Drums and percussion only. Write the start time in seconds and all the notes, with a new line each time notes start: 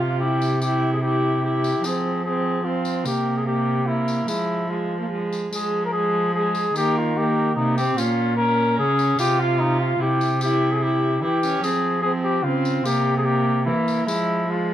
0.42 tambourine
0.62 tambourine
1.64 tambourine
1.84 tambourine
2.85 tambourine
3.05 tambourine
4.08 tambourine
4.28 tambourine
5.32 tambourine
5.52 tambourine
6.54 tambourine
6.76 tambourine
7.78 tambourine
7.98 tambourine
8.99 tambourine
9.19 tambourine
10.21 tambourine
10.41 tambourine
11.43 tambourine
11.64 tambourine
12.65 tambourine
12.86 tambourine
13.88 tambourine
14.09 tambourine